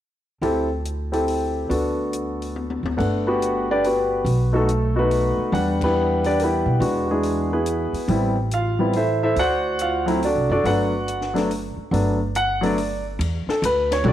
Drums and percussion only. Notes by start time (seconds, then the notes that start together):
0.43 open hi-hat
0.85 closed hi-hat
1.13 open hi-hat
1.28 open hi-hat
1.71 open hi-hat
2.13 closed hi-hat
2.42 open hi-hat
2.56 high tom
2.70 high tom
2.86 high tom
2.99 kick, ride
3.42 closed hi-hat
3.84 open hi-hat
4.26 open hi-hat
4.69 closed hi-hat
5.11 open hi-hat
5.55 open hi-hat
5.81 kick, ride
6.24 open hi-hat
6.40 open hi-hat
6.82 open hi-hat
7.23 open hi-hat
7.66 closed hi-hat
7.94 open hi-hat
8.08 open hi-hat
8.51 closed hi-hat
8.93 open hi-hat
9.36 open hi-hat
9.79 closed hi-hat
10.08 open hi-hat
10.23 open hi-hat
10.65 open hi-hat
11.08 closed hi-hat
11.21 snare
11.36 snare, open hi-hat
11.51 open hi-hat
11.94 open hi-hat
12.35 closed hi-hat
12.63 open hi-hat
12.78 open hi-hat
13.21 ride
13.49 snare
13.64 hi-hat pedal, ride
13.92 snare, ride